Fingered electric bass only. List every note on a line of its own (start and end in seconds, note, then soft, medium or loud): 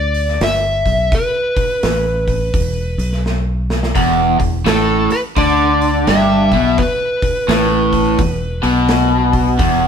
0.00 0.37 D2 medium
0.40 0.82 G1 medium
0.86 1.10 B1 medium
1.83 2.50 A1 medium
2.54 2.96 E1 medium
2.98 3.91 B1 medium
3.96 4.37 E1 medium
4.40 4.65 E1 medium
4.66 5.07 A1 medium
5.37 6.04 D2 medium
6.07 6.49 G1 medium
6.52 6.77 B1 medium
7.48 8.15 A1 medium
8.19 8.60 E1 medium
8.64 9.56 B1 medium
9.59 9.88 E1 medium